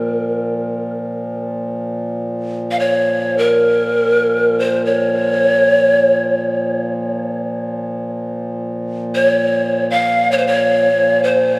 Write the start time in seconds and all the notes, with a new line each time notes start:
Already playing: A#2 F3 A#4
2.71 F5
2.79 C#5
3.38 A#4
4.59 C5
4.85 C#5
9.15 C#5
9.90 F5
10.32 C#5
10.38 C5
10.47 C#5
10.90 A#2 F3
11.24 C5